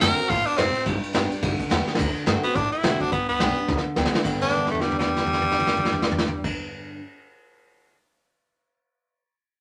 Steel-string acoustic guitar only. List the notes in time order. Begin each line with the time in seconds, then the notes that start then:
0.01 D3 A3 C4 F#4
0.18 C4 F#4
0.29 B2
0.58 A2
0.86 G2
1.13 G3 B3 D4 G4
1.31 D4 G4
1.43 D3
1.70 G3 B3 D4 G4
1.87 D4 G4
1.99 D3
2.26 D3 A3 C4 F#4
2.44 C4 F#4
2.55 A2
2.83 D3 A3 C4 F#4
3.00 C4 F#4
3.12 G2
3.40 G3 B3 D4 G4
3.57 D4 G4
3.68 D3
3.96 G3 B3 D4 G4
4.13 D4 G4
4.24 G2 D3 G3 B3 D4 G4